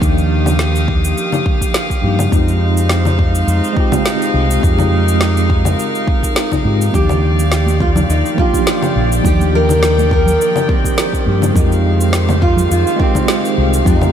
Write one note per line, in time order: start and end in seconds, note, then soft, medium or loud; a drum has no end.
0.00 1.12 D#2 medium
0.00 2.28 D#3 medium
0.00 2.01 F3 medium
0.00 2.02 A#3 medium
0.00 2.03 D4 medium
0.00 0.03 D#4 medium
0.00 2.01 D#4 medium
0.00 0.05 G4 loud
0.00 2.28 G4 medium
0.00 9.21 F5 medium
0.00 2.30 D#6 medium
0.00 kick loud
0.00 cabasa soft
0.05 2.02 G4 medium
0.18 cabasa soft
0.46 low conga medium
0.46 cabasa medium
0.59 snare medium
0.59 cabasa soft
0.76 cabasa soft
0.88 kick medium
1.05 cabasa medium
1.18 cabasa medium
1.32 low conga medium
1.32 cabasa soft
1.46 kick loud
1.61 kick medium
1.61 cabasa medium
1.74 snare medium
1.74 cabasa soft
1.90 kick medium
1.90 cabasa soft
2.01 2.26 G2 medium
2.01 2.28 F3 medium
2.01 2.28 A#3 medium
2.01 2.29 D4 medium
2.01 2.29 D#4 medium
2.01 2.30 G4 medium
2.19 low conga medium
2.19 cabasa medium
2.28 3.71 G#3 medium
2.28 3.72 C4 medium
2.28 3.73 D#4 medium
2.32 3.43 F2 medium
2.32 6.90 G#3 medium
2.32 6.90 D#4 medium
2.32 3.74 F4 medium
2.32 3.75 G4 medium
2.32 4.61 C5 medium
2.32 kick loud
2.32 cabasa soft
2.48 cabasa soft
2.77 cabasa medium
2.89 snare medium
2.89 cabasa soft
3.05 low conga medium
3.05 cabasa soft
3.19 kick medium
3.35 cabasa medium
3.47 3.60 F2 medium
3.47 cabasa soft
3.64 cabasa soft
3.73 4.58 G#3 loud
3.73 4.59 C4 medium
3.73 4.60 D#4 medium
3.77 4.61 F4 medium
3.77 4.62 G4 loud
3.77 kick loud
3.92 kick soft
3.92 low conga medium
3.92 cabasa medium
4.06 snare medium
4.06 cabasa soft
4.22 cabasa soft
4.34 4.57 C2 medium
4.51 cabasa medium
4.60 5.74 F2 medium
4.60 6.60 G#3 medium
4.60 6.61 C4 medium
4.60 6.62 D#4 medium
4.60 6.91 A#4 medium
4.60 kick loud
4.64 6.63 F4 medium
4.64 6.64 G4 medium
4.64 cabasa soft
4.79 low conga medium
4.79 cabasa soft
5.08 cabasa medium
5.21 snare loud
5.21 cabasa soft
5.37 cabasa soft
5.50 kick medium
5.65 low conga medium
5.65 cabasa medium
5.79 cabasa medium
5.95 cabasa soft
6.08 kick loud
6.23 kick medium
6.23 cabasa medium
6.36 snare loud
6.36 cabasa soft
6.52 kick medium
6.52 low conga medium
6.52 cabasa soft
6.63 6.88 G#2 medium
6.63 6.90 G#3 medium
6.63 6.90 C4 medium
6.63 6.91 D#4 medium
6.63 6.91 F4 medium
6.63 6.92 G4 medium
6.81 cabasa medium
6.90 8.05 D#2 medium
6.90 8.33 F3 medium
6.90 8.34 A#3 medium
6.90 kick loud
6.90 low conga medium
6.94 14.12 D#3 medium
6.94 8.35 D4 medium
6.94 8.36 D#4 medium
6.94 11.52 G4 medium
6.94 7.81 G4 medium
6.94 8.37 G4 medium
6.94 11.52 D5 medium
6.94 cabasa medium
7.09 low conga medium
7.09 cabasa soft
7.39 cabasa medium
7.52 snare medium
7.52 cabasa soft
7.66 high conga medium
7.66 cabasa soft
7.80 7.89 F4 loud
7.80 kick loud
7.95 low conga medium
7.95 cabasa medium
8.09 8.21 D#2 medium
8.09 8.40 D#4 medium
8.09 cabasa medium
8.26 cabasa soft
8.34 9.19 F3 medium
8.34 9.20 A#3 medium
8.38 9.21 D4 medium
8.38 9.22 D#4 medium
8.38 9.26 F4 medium
8.38 9.23 G4 loud
8.38 kick loud
8.54 kick medium
8.54 cabasa medium
8.67 snare loud
8.67 cabasa soft
8.82 low conga medium
8.82 cabasa soft
8.96 9.19 A#1 medium
9.12 cabasa medium
9.21 11.21 F3 medium
9.21 11.22 A#3 medium
9.21 11.53 G5 medium
9.21 kick loud
9.21 low conga medium
9.25 10.35 D#2 loud
9.25 11.23 D4 medium
9.25 11.24 D#4 medium
9.25 9.55 G4 loud
9.25 11.25 G4 medium
9.25 cabasa medium
9.40 high conga medium
9.40 cabasa soft
9.55 10.11 A#4 loud
9.69 low conga medium
9.69 cabasa medium
9.83 snare loud
9.83 cabasa soft
9.98 high conga medium
9.98 cabasa soft
10.11 10.66 A#4 loud
10.11 kick loud
10.26 low conga medium
10.26 cabasa medium
10.41 cabasa medium
10.56 low conga medium
10.56 cabasa soft
10.69 11.56 C4 medium
10.69 kick loud
10.84 kick medium
10.84 cabasa medium
10.98 snare loud
10.98 cabasa medium
11.13 kick medium
11.13 cabasa soft
11.25 11.50 G2 medium
11.25 11.52 F3 medium
11.25 11.52 A#3 medium
11.25 11.52 D4 medium
11.25 11.53 D#4 medium
11.25 11.53 G4 medium
11.42 low conga medium
11.42 cabasa medium
11.52 12.66 F2 loud
11.52 12.95 G#3 medium
11.52 14.12 G#3 medium
11.52 12.96 C4 medium
11.52 12.97 D#4 medium
11.52 13.84 C5 medium
11.52 14.12 F5 medium
11.52 kick loud
11.52 low conga medium
11.56 12.45 D#4 medium
11.56 12.98 F4 medium
11.56 12.99 G4 medium
11.56 cabasa medium
11.72 cabasa soft
12.01 cabasa medium
12.13 snare loud
12.13 cabasa medium
12.29 high conga medium
12.29 low conga medium
12.29 cabasa soft
12.42 12.71 F4 medium
12.42 kick loud
12.57 low conga medium
12.57 cabasa medium
12.71 12.83 F2 medium
12.71 13.01 F4 loud
12.71 cabasa medium
12.87 cabasa soft
12.96 13.81 G#3 medium
12.96 13.82 C4 medium
12.96 13.83 D#4 medium
12.96 kick loud
13.00 13.83 C4 medium
13.00 13.84 F4 medium
13.00 13.85 G4 loud
13.15 kick medium
13.15 low conga medium
13.15 cabasa medium
13.28 snare loud
13.28 cabasa medium
13.45 cabasa soft
13.58 13.81 C2 medium
13.74 cabasa medium
13.83 14.12 F2 medium
13.83 14.12 G#3 medium
13.83 14.12 C4 medium
13.83 14.12 D#4 medium
13.83 14.12 A#4 medium
13.83 kick loud
13.83 low conga medium
13.87 14.12 D#4 medium
13.87 14.12 F4 medium
13.87 14.12 G4 medium
13.87 cabasa soft
14.01 high conga medium
14.01 low conga medium
14.01 cabasa soft